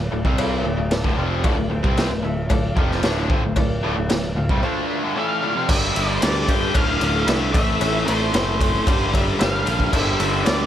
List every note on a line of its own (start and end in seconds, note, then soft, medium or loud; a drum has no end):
0.10 0.24 D1 medium
0.10 0.25 D2 medium
0.10 0.25 A2 medium
0.10 0.32 F4 medium
0.10 0.33 A4 medium
0.10 0.32 D5 loud
0.25 0.62 C2 loud
0.25 0.64 C3 medium
0.25 0.64 G3 medium
0.25 0.65 C4 medium
0.25 kick loud
0.38 0.59 F4 loud
0.38 0.59 A4 loud
0.38 0.60 D5 loud
0.38 cowbell loud
0.38 crash medium
0.64 0.77 D1 medium
0.64 0.76 D2 medium
0.64 0.77 A2 medium
0.64 0.86 F4 medium
0.64 0.85 A4 medium
0.64 0.86 D5 loud
0.77 1.02 D1 medium
0.77 0.99 D2 medium
0.77 0.99 A2 medium
0.91 1.12 F4 medium
0.91 1.12 A4 medium
0.91 1.12 D5 loud
0.91 1.16 A5 medium
0.91 snare loud
0.91 cowbell medium
0.91 crash medium
1.04 1.17 D1 medium
1.04 1.17 D2 medium
1.04 1.17 A2 loud
1.04 kick loud
1.17 1.42 F1 medium
1.17 1.43 F2 medium
1.17 1.44 C3 loud
1.17 1.44 F3 loud
1.17 1.38 F4 medium
1.17 1.39 A4 medium
1.17 1.39 D5 loud
1.17 1.42 F5 medium
1.43 1.57 D1 medium
1.43 1.56 D2 loud
1.43 1.56 A2 loud
1.43 1.65 F4 loud
1.43 1.66 A4 loud
1.43 1.65 D5 loud
1.43 kick loud
1.43 cowbell medium
1.43 crash medium
1.57 1.70 D1 medium
1.57 1.68 D2 medium
1.57 1.69 A2 medium
1.70 1.83 D1 medium
1.70 1.83 D2 medium
1.70 1.83 A2 medium
1.70 1.92 F4 medium
1.70 1.92 A4 medium
1.70 1.92 C5 medium
1.83 2.09 C2 loud
1.83 2.09 C3 medium
1.83 2.09 G3 loud
1.83 2.10 C4 loud
1.83 kick loud
1.97 2.19 F4 medium
1.97 2.19 A4 medium
1.97 2.19 C5 loud
1.97 snare loud
1.97 cowbell medium
1.97 crash medium
2.10 2.23 D1 medium
2.10 2.21 D2 medium
2.10 2.22 A2 medium
2.23 2.48 D1 medium
2.23 2.44 D2 medium
2.23 2.45 A2 medium
2.23 2.46 F4 medium
2.23 2.46 A4 medium
2.23 2.45 E5 loud
2.50 2.75 D1 medium
2.50 2.71 D2 medium
2.50 2.72 A2 medium
2.50 2.72 F4 loud
2.50 2.72 A4 loud
2.50 2.72 D5 loud
2.50 kick loud
2.50 cowbell loud
2.50 crash medium
2.77 3.02 F1 medium
2.77 3.03 F2 loud
2.77 3.03 C3 loud
2.77 3.03 F3 loud
2.77 2.99 F4 medium
2.77 2.99 A4 medium
2.77 2.99 D5 loud
2.77 kick loud
2.92 snare soft
3.03 3.28 D1 medium
3.03 3.29 D2 medium
3.03 3.29 A2 medium
3.03 3.30 D3 loud
3.03 3.25 F4 medium
3.03 3.25 A4 medium
3.03 3.25 D5 loud
3.03 snare loud
3.03 cowbell medium
3.03 crash medium
3.30 3.42 G1 loud
3.30 3.42 G2 loud
3.30 3.43 D3 medium
3.30 3.52 F4 medium
3.30 3.52 A4 medium
3.30 3.52 C5 loud
3.30 kick loud
3.44 3.56 D1 medium
3.44 3.56 D2 medium
3.44 3.56 A2 medium
3.56 3.81 D1 medium
3.56 3.78 D2 medium
3.56 3.78 A2 medium
3.56 3.78 F4 loud
3.56 3.78 A4 loud
3.56 3.78 D5 loud
3.56 kick loud
3.56 cowbell medium
3.56 crash medium
3.83 3.96 D1 loud
3.83 3.95 D2 medium
3.83 3.96 A2 loud
3.83 4.05 F4 medium
3.83 4.05 A4 medium
3.83 4.05 D5 loud
3.97 4.09 D1 medium
3.97 4.08 D2 medium
3.97 4.08 A2 medium
4.09 4.35 D1 medium
4.09 4.30 D2 medium
4.09 4.31 A2 medium
4.09 4.31 F4 medium
4.09 4.31 A4 medium
4.09 4.31 D5 loud
4.09 snare loud
4.09 cowbell medium
4.09 crash medium
4.36 4.49 D1 medium
4.36 4.49 D2 medium
4.36 4.49 A2 medium
4.36 4.57 F4 medium
4.36 4.57 A4 medium
4.36 4.58 F5 loud
4.49 4.62 C2 medium
4.49 4.62 C3 medium
4.49 4.62 G3 medium
4.49 kick loud
4.62 5.02 D3 loud
4.62 5.02 A3 loud
4.62 5.02 D4 loud
4.62 4.84 F4 loud
4.62 4.84 A4 loud
4.62 4.84 C5 loud
4.89 5.11 F4 medium
4.89 5.10 A4 medium
4.89 5.11 E5 loud
5.03 5.15 G2 medium
5.03 5.15 D3 loud
5.16 5.41 A2 medium
5.16 5.42 E3 loud
5.16 5.42 A3 medium
5.16 5.37 F4 medium
5.16 5.37 A4 medium
5.16 5.37 D5 loud
5.16 5.66 F5 loud
5.42 5.55 D2 medium
5.42 5.55 A2 loud
5.42 5.63 F4 loud
5.42 5.63 A4 medium
5.42 5.63 D5 loud
5.56 5.68 F2 loud
5.56 5.68 C3 loud
5.68 5.91 G1 loud
5.68 5.94 G2 loud
5.68 5.94 D3 loud
5.68 5.95 G3 medium
5.68 5.95 G3 loud
5.68 5.90 D4 loud
5.68 5.95 D4 medium
5.68 5.90 G4 medium
5.68 5.95 G4 medium
5.68 5.90 A#4 medium
5.68 5.94 A#4 medium
5.68 5.90 D5 loud
5.68 6.18 E5 loud
5.68 kick loud
5.68 crash loud
5.68 cowbell medium
5.95 6.18 G1 loud
5.95 6.20 G2 medium
5.95 6.21 D3 loud
5.95 6.22 G3 loud
5.95 6.16 D4 medium
5.95 6.22 D4 soft
5.95 6.16 G4 medium
5.95 6.22 G4 soft
5.95 6.22 A#4 medium
5.95 6.17 A#4 medium
5.95 6.16 E5 loud
5.95 ride medium
6.15 6.21 C5 medium
6.21 6.45 D2 medium
6.21 6.46 G2 loud
6.21 6.46 D3 loud
6.21 6.49 G3 medium
6.21 6.47 G3 loud
6.21 6.43 D4 medium
6.21 6.49 D4 medium
6.21 6.43 G4 medium
6.21 6.48 G4 medium
6.21 6.43 A#4 medium
6.21 6.48 A#4 medium
6.21 6.43 C5 medium
6.21 6.50 D5 loud
6.21 snare loud
6.21 ride loud
6.21 cowbell medium
6.47 6.73 G2 medium
6.47 6.71 G2 medium
6.47 6.73 D3 loud
6.47 6.73 G3 medium
6.47 6.69 D4 medium
6.47 6.74 D4 soft
6.47 6.69 G4 medium
6.47 6.75 G4 soft
6.47 6.69 A#4 medium
6.47 6.75 A#4 medium
6.47 6.69 D5 medium
6.47 6.76 G5 loud
6.47 kick medium
6.47 ride medium
6.47 cowbell medium
6.74 6.97 D1 medium
6.74 6.99 D2 medium
6.74 7.00 A2 loud
6.74 7.00 D3 loud
6.74 7.01 A3 medium
6.74 6.96 D4 medium
6.74 7.01 D4 medium
6.74 6.96 F4 medium
6.74 7.01 F4 medium
6.74 6.96 A4 medium
6.74 7.00 A4 medium
6.74 6.96 D5 medium
6.74 7.28 F5 loud
6.74 kick loud
6.74 ride loud
6.74 cowbell loud
7.01 7.24 D1 medium
7.01 7.26 D2 loud
7.01 7.27 A2 loud
7.01 7.27 D3 loud
7.01 7.23 D4 medium
7.01 7.28 D4 soft
7.01 7.23 F4 medium
7.01 7.28 F4 medium
7.01 7.23 A4 medium
7.01 7.28 A4 medium
7.01 7.23 D5 medium
7.01 ride medium
7.01 cowbell medium
7.27 7.54 C2 medium
7.27 7.52 D2 medium
7.27 7.52 A2 medium
7.27 7.53 D3 medium
7.27 7.55 D3 medium
7.27 7.55 A3 medium
7.27 7.49 D4 loud
7.27 7.55 D4 medium
7.27 7.49 F4 medium
7.27 7.54 F4 medium
7.27 7.49 A4 loud
7.27 7.53 A4 medium
7.27 7.49 D5 loud
7.27 7.52 E5 loud
7.27 snare loud
7.27 ride loud
7.53 7.77 A1 loud
7.53 7.79 A2 medium
7.53 7.80 E3 loud
7.53 7.80 A3 loud
7.53 7.80 A3 soft
7.53 7.97 C4 medium
7.53 7.81 C4 medium
7.53 7.97 E4 medium
7.53 7.81 E4 soft
7.53 7.81 A4 medium
7.53 7.97 A4 medium
7.53 7.97 C5 medium
7.53 8.03 E5 medium
7.53 kick loud
7.53 ride medium
7.53 cowbell medium
7.80 8.03 A1 loud
7.80 8.06 A2 medium
7.80 8.07 A2 medium
7.80 8.07 E3 loud
7.80 8.07 E3 medium
7.80 8.08 A3 medium
7.80 8.07 A3 loud
7.80 8.08 C4 medium
7.80 8.07 E4 medium
7.80 8.06 A4 medium
7.80 ride loud
7.80 cowbell loud
8.06 8.30 A1 medium
8.06 8.32 A2 medium
8.06 8.32 E3 medium
8.06 8.33 A3 loud
8.06 8.29 C4 loud
8.06 8.34 C4 medium
8.06 8.29 E4 medium
8.06 8.34 E4 medium
8.06 8.34 A4 medium
8.06 8.29 A4 medium
8.06 9.09 C5 loud
8.06 8.29 D5 loud
8.06 ride medium
8.10 8.34 A3 soft
8.33 8.79 F#1 loud
8.33 8.58 A2 loud
8.33 8.60 A2 medium
8.33 8.59 E3 loud
8.33 8.61 E3 medium
8.33 8.60 A3 loud
8.33 8.60 A3 medium
8.33 8.56 C4 medium
8.33 8.59 C4 medium
8.33 8.55 E4 medium
8.33 8.59 E4 loud
8.33 8.55 A4 medium
8.33 8.58 A4 medium
8.33 8.55 C5 medium
8.33 snare loud
8.33 ride loud
8.33 cowbell medium
8.59 8.85 A2 medium
8.59 8.85 E3 medium
8.59 8.86 A3 medium
8.59 8.85 A3 soft
8.59 8.86 C4 soft
8.59 8.82 C4 medium
8.59 8.87 E4 soft
8.59 8.82 E4 medium
8.59 8.86 A4 medium
8.59 8.82 A4 medium
8.59 8.82 D5 medium
8.59 kick medium
8.59 ride medium
8.59 cowbell medium
8.85 9.32 G1 medium
8.85 9.11 G2 loud
8.85 9.11 D3 loud
8.85 9.13 G3 medium
8.85 9.13 G3 loud
8.85 9.13 D4 medium
8.85 9.08 D4 medium
8.85 9.12 G4 medium
8.85 9.08 G4 medium
8.85 9.08 A#4 medium
8.85 9.11 A#4 medium
8.85 9.08 D5 loud
8.85 kick loud
8.85 ride loud
8.85 cowbell medium
9.12 9.38 G2 loud
9.12 9.39 D3 loud
9.12 9.39 G3 loud
9.12 9.35 D4 medium
9.12 9.38 D4 soft
9.12 9.35 G4 medium
9.12 9.39 G4 medium
9.12 9.39 A#4 medium
9.12 9.35 A#4 medium
9.12 9.35 D5 medium
9.12 9.21 E5 loud
9.12 kick medium
9.12 ride medium
9.12 cowbell medium
9.39 9.63 G1 medium
9.39 9.65 G2 medium
9.39 9.66 D3 medium
9.39 9.66 G3 medium
9.39 9.66 G3 loud
9.39 9.66 D4 medium
9.39 9.61 D4 medium
9.39 9.61 G4 medium
9.39 9.65 G4 medium
9.39 9.61 A#4 medium
9.39 9.64 A#4 medium
9.39 9.61 C5 loud
9.39 9.93 F5 loud
9.39 snare loud
9.39 ride loud
9.65 9.89 A#1 medium
9.65 9.91 G2 medium
9.65 9.92 D3 loud
9.65 9.92 G3 loud
9.65 9.88 D4 medium
9.65 9.92 D4 soft
9.65 9.88 G4 medium
9.65 9.92 A#4 medium
9.65 9.88 A#4 medium
9.65 9.88 D5 medium
9.65 ride medium
9.65 cowbell medium
9.80 kick medium
9.93 10.16 G1 loud
9.93 10.19 G2 loud
9.93 10.20 D3 loud
9.93 10.19 G3 medium
9.93 10.20 G3 loud
9.93 10.14 D4 medium
9.93 10.20 D4 medium
9.93 10.14 G4 medium
9.93 10.19 G4 medium
9.93 10.14 A#4 medium
9.93 10.18 A#4 medium
9.93 10.14 D5 loud
9.93 10.45 E5 loud
9.93 kick loud
9.93 crash loud
9.93 cowbell medium
10.19 10.42 G1 medium
10.19 10.45 G2 medium
10.19 10.46 D3 loud
10.19 10.46 G3 loud
10.19 10.41 D4 loud
10.19 10.45 D4 soft
10.19 10.41 G4 medium
10.19 10.46 G4 medium
10.19 10.46 A#4 medium
10.19 10.41 A#4 medium
10.19 10.41 D5 loud
10.19 ride medium
10.45 10.66 D2 loud
10.45 10.66 G2 loud
10.45 10.66 D3 loud
10.45 10.66 G3 medium
10.45 10.66 G3 loud
10.45 10.66 D4 medium
10.45 10.66 G4 medium
10.45 10.66 G4 loud
10.45 10.66 A#4 medium
10.45 10.66 A#4 loud
10.45 10.66 D5 loud
10.45 10.66 D5 medium
10.45 snare loud
10.45 ride loud
10.45 cowbell medium